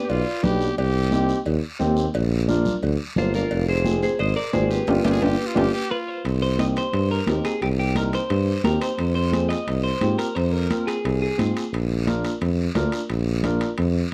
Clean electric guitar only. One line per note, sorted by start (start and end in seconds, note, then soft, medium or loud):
0.00 0.24 B4 medium
0.00 0.23 D5 medium
3.18 3.34 F4 medium
3.18 3.34 C5 medium
3.35 3.66 F4 medium
3.35 3.66 A#4 medium
3.69 4.00 G#4 medium
3.69 4.00 C5 medium
4.03 4.19 G#4 medium
4.03 4.19 C5 medium
4.20 4.36 C5 medium
4.20 4.36 D#5 medium
4.36 4.52 A#4 medium
4.36 4.52 D5 medium
4.53 4.70 G#4 medium
4.53 4.70 C5 medium
4.70 5.86 G4 medium
4.70 5.90 B4 medium
5.91 5.96 B4 medium
6.08 6.41 C5 medium
6.42 6.58 C5 medium
6.60 6.65 D#5 medium
6.78 7.11 C5 medium
7.11 7.46 A#4 medium
7.45 7.61 G#4 medium
7.62 7.67 G4 medium
7.79 7.95 G4 medium
7.97 8.02 A#4 medium
8.15 8.64 C5 loud
8.65 8.81 A#4 medium
8.82 9.13 C5 medium
9.15 9.47 C5 medium
9.49 9.81 D#5 loud
9.84 10.16 C5 medium
10.18 10.35 A#4 medium
10.35 10.52 C5 medium
10.52 10.88 A#4 medium
10.87 11.21 G#4 medium
11.22 11.54 G#4 medium